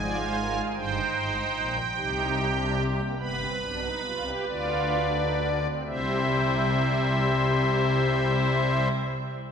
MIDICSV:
0, 0, Header, 1, 2, 480
1, 0, Start_track
1, 0, Tempo, 779221
1, 475, Time_signature, 12, 3, 24, 8
1, 1449, Tempo, 842697
1, 2409, Tempo, 914634
1, 3369, Tempo, 958466
1, 5197, End_track
2, 0, Start_track
2, 0, Title_t, "Pipe organ"
2, 0, Program_c, 0, 19
2, 0, Note_on_c, 0, 32, 85
2, 0, Note_on_c, 0, 44, 96
2, 0, Note_on_c, 0, 80, 93
2, 14, Note_on_c, 0, 74, 82
2, 16, Note_on_c, 0, 65, 97
2, 111, Note_off_c, 0, 74, 0
2, 126, Note_on_c, 0, 72, 85
2, 225, Note_off_c, 0, 72, 0
2, 241, Note_on_c, 0, 70, 83
2, 341, Note_off_c, 0, 70, 0
2, 356, Note_on_c, 0, 68, 93
2, 376, Note_off_c, 0, 44, 0
2, 377, Note_off_c, 0, 32, 0
2, 378, Note_off_c, 0, 80, 0
2, 414, Note_off_c, 0, 65, 0
2, 458, Note_off_c, 0, 68, 0
2, 464, Note_on_c, 0, 79, 86
2, 466, Note_on_c, 0, 31, 93
2, 466, Note_on_c, 0, 63, 96
2, 466, Note_on_c, 0, 72, 100
2, 467, Note_on_c, 0, 43, 89
2, 616, Note_off_c, 0, 31, 0
2, 617, Note_off_c, 0, 43, 0
2, 704, Note_on_c, 0, 44, 73
2, 707, Note_on_c, 0, 32, 76
2, 856, Note_off_c, 0, 44, 0
2, 859, Note_off_c, 0, 32, 0
2, 951, Note_on_c, 0, 34, 86
2, 952, Note_on_c, 0, 46, 84
2, 1093, Note_off_c, 0, 63, 0
2, 1093, Note_off_c, 0, 72, 0
2, 1104, Note_off_c, 0, 34, 0
2, 1105, Note_off_c, 0, 46, 0
2, 1199, Note_on_c, 0, 48, 78
2, 1203, Note_on_c, 0, 36, 85
2, 1203, Note_on_c, 0, 63, 82
2, 1203, Note_on_c, 0, 67, 90
2, 1519, Note_off_c, 0, 63, 0
2, 1569, Note_on_c, 0, 62, 85
2, 1669, Note_off_c, 0, 62, 0
2, 1685, Note_on_c, 0, 60, 83
2, 1724, Note_off_c, 0, 79, 0
2, 1787, Note_off_c, 0, 60, 0
2, 1797, Note_on_c, 0, 58, 68
2, 1823, Note_off_c, 0, 48, 0
2, 1825, Note_off_c, 0, 36, 0
2, 1825, Note_off_c, 0, 67, 0
2, 1902, Note_off_c, 0, 58, 0
2, 1925, Note_on_c, 0, 31, 81
2, 1925, Note_on_c, 0, 43, 84
2, 1925, Note_on_c, 0, 59, 77
2, 1925, Note_on_c, 0, 71, 82
2, 1925, Note_on_c, 0, 83, 83
2, 2027, Note_off_c, 0, 59, 0
2, 2044, Note_on_c, 0, 60, 73
2, 2074, Note_off_c, 0, 31, 0
2, 2074, Note_off_c, 0, 43, 0
2, 2148, Note_off_c, 0, 60, 0
2, 2168, Note_on_c, 0, 35, 74
2, 2168, Note_on_c, 0, 47, 71
2, 2170, Note_on_c, 0, 62, 75
2, 2272, Note_off_c, 0, 62, 0
2, 2288, Note_on_c, 0, 63, 70
2, 2319, Note_off_c, 0, 35, 0
2, 2319, Note_off_c, 0, 47, 0
2, 2393, Note_off_c, 0, 63, 0
2, 2411, Note_on_c, 0, 36, 76
2, 2413, Note_on_c, 0, 65, 77
2, 2414, Note_on_c, 0, 48, 71
2, 2511, Note_off_c, 0, 65, 0
2, 2523, Note_on_c, 0, 67, 78
2, 2547, Note_off_c, 0, 83, 0
2, 2554, Note_off_c, 0, 36, 0
2, 2556, Note_off_c, 0, 48, 0
2, 2624, Note_off_c, 0, 67, 0
2, 2641, Note_on_c, 0, 38, 89
2, 2644, Note_on_c, 0, 50, 79
2, 2644, Note_on_c, 0, 74, 85
2, 2645, Note_on_c, 0, 65, 81
2, 2951, Note_off_c, 0, 65, 0
2, 2992, Note_on_c, 0, 63, 74
2, 3100, Note_off_c, 0, 63, 0
2, 3116, Note_on_c, 0, 62, 71
2, 3173, Note_off_c, 0, 71, 0
2, 3224, Note_off_c, 0, 62, 0
2, 3243, Note_on_c, 0, 60, 83
2, 3267, Note_off_c, 0, 38, 0
2, 3269, Note_off_c, 0, 50, 0
2, 3269, Note_off_c, 0, 74, 0
2, 3351, Note_off_c, 0, 60, 0
2, 3368, Note_on_c, 0, 36, 77
2, 3369, Note_on_c, 0, 48, 78
2, 3369, Note_on_c, 0, 76, 72
2, 3370, Note_on_c, 0, 60, 83
2, 3370, Note_on_c, 0, 72, 80
2, 3383, Note_on_c, 0, 55, 66
2, 3384, Note_on_c, 0, 64, 61
2, 4879, Note_off_c, 0, 36, 0
2, 4880, Note_off_c, 0, 48, 0
2, 4880, Note_off_c, 0, 76, 0
2, 4881, Note_off_c, 0, 60, 0
2, 4881, Note_off_c, 0, 72, 0
2, 4894, Note_off_c, 0, 55, 0
2, 4895, Note_off_c, 0, 64, 0
2, 5197, End_track
0, 0, End_of_file